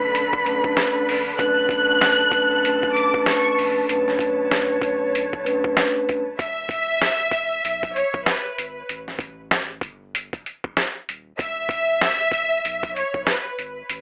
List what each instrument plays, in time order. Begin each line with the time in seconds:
Already playing: sub bass B1, string section D3 A4 B4 B5, vibraphone A3 C#4 D4 B4
0.15 closed hi-hat
0.33 kick
0.44 vibraphone A3 C#4 D4 B4, closed hi-hat
0.64 sub bass B1, kick
0.77 snare, closed hi-hat
1.08 sub bass A#1, open hi-hat
1.38 sub bass B1, vibraphone A3 C#4 D4 B4, string section A4 A5, violin section F#6, kick, closed hi-hat
1.69 kick, closed hi-hat
1.89 vibraphone A3 C#4 D4 B4
2.01 snare, closed hi-hat
2.31 vibraphone A3 C#4 D4 B4, kick, closed hi-hat
2.65 vibraphone A3 C#4 D4 B4, closed hi-hat
2.83 kick
2.95 violin section D6, closed hi-hat
3.14 sub bass A1, kick
3.26 violin section C#6, snare, closed hi-hat
3.58 sub bass A#1, open hi-hat
3.89 sub bass B1, vibraphone A3 C#4 D4 B4, string section C#5, closed hi-hat
4.08 snare
4.19 kick, closed hi-hat
4.51 snare, closed hi-hat
4.82 kick, closed hi-hat
5.15 closed hi-hat
5.33 kick
5.44 vibraphone A3 C#4 D4 B4, closed hi-hat
5.64 sub bass B1, kick
5.77 snare, closed hi-hat
6.09 sub bass D#1, kick, closed hi-hat
6.39 sub bass E1, violin section E5, kick, closed hi-hat
6.69 kick, closed hi-hat
7.02 snare, closed hi-hat
7.31 kick, closed hi-hat
7.64 sub bass B1, closed hi-hat
7.83 kick, closed hi-hat
7.95 violin section C#5, closed hi-hat
8.14 sub bass B1, kick
8.24 violin section B4, snare, closed hi-hat
8.58 sub bass G#1, closed hi-hat
8.89 sub bass A1, closed hi-hat
9.08 snare
9.19 kick, closed hi-hat
9.51 snare, closed hi-hat
9.81 sub bass G1, kick, closed hi-hat
10.15 closed hi-hat
10.33 kick, closed hi-hat
10.46 closed hi-hat
10.64 sub bass F#1, kick
10.77 snare, closed hi-hat
11.08 sub bass D#1, closed hi-hat
11.38 sub bass E1, violin section E5, kick, closed hi-hat
11.69 kick, closed hi-hat
12.01 snare, closed hi-hat
12.32 kick, closed hi-hat
12.64 sub bass B1, closed hi-hat
12.83 kick, closed hi-hat
12.96 violin section C#5, closed hi-hat
13.14 sub bass B1, kick
13.26 violin section B4, snare, closed hi-hat
13.58 sub bass G#1, closed hi-hat
13.89 sub bass A1, closed hi-hat